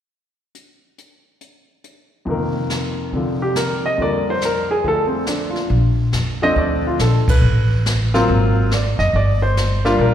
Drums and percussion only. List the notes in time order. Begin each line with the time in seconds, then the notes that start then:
0.55 closed hi-hat
0.98 closed hi-hat
1.41 closed hi-hat
1.84 closed hi-hat
2.27 brush sweep, kick
2.70 snare, hi-hat pedal
3.13 brush sweep, kick
3.56 snare, hi-hat pedal
3.99 brush sweep, kick
4.41 snare, hi-hat pedal
4.84 brush sweep, kick
5.26 snare, hi-hat pedal
5.56 snare
5.70 brush sweep, kick
6.13 snare, hi-hat pedal
6.56 brush sweep, kick
6.99 snare, hi-hat pedal
7.28 kick, ride
7.43 brush sweep
7.86 snare, hi-hat pedal
8.14 snare
8.28 brush sweep, kick
8.71 snare, hi-hat pedal
8.99 snare
9.14 brush sweep, kick
9.57 snare, hi-hat pedal
9.85 snare
9.99 brush sweep, kick